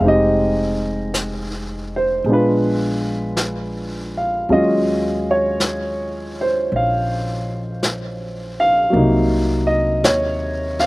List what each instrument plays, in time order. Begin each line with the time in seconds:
0.00 upright bass F1, upright piano G#3 C4, brush sweep
0.04 upright piano D#4 G4 D#5
1.14 brush sweep, snare, hi-hat pedal
1.96 upright piano C5
2.24 upright bass A#1, upright piano G#3 B3, brush sweep
2.29 upright piano D4 F4 B4
3.37 brush sweep, snare, hi-hat pedal
4.17 upright piano F5
4.48 upright bass D#2, upright piano F#3 G#3 C#4 F4, brush sweep
4.52 upright piano D#5
5.31 upright piano C#5
5.60 brush sweep, snare, hi-hat pedal
6.41 upright piano C5
6.71 upright bass A#1, brush sweep
6.76 upright piano F5
7.83 brush sweep, snare, hi-hat pedal
8.60 upright piano F5
8.90 upright bass C2, upright piano F#3 A#3, brush sweep
8.95 upright piano C3 D#4
9.67 upright piano D#5
10.04 upright bass D#2, upright piano C#5, brush sweep, snare, hi-hat pedal
10.79 upright piano F5, snare